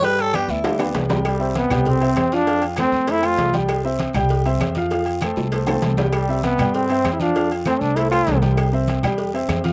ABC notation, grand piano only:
X:1
M:4/4
L:1/8
Q:1/4=197
K:C
V:1 name="Grand piano"
[G,Gg]2 [B,Bd]2 [G,Gg] [B,Bd]2 [G,Gg] | z [Cce]2 [G,Gg]2 [Cce]2 [F,Ff] | [F,Ff]2 [A,Ac]2 [A,Ac] [A,Ac]2 [G,Gg]- | [G,Gg] [Cce]2 [G,Gg]2 [Cce]2 [F,Ff] |
[F,Ff]2 [A,Ac]2 [A,Ac] [A,Ac]2 [G,Gg]- | [G,Gg] [Cce]2 [G,Gg]2 [Cce]2 [F,Ff] | [F,Ff]2 [A,Ac]2 [A,Ac] [A,Ac]2 [G,Gg]- | [G,Gg] [Cce]2 [G,Gg]2 [Cce]2 [F,Ff] |]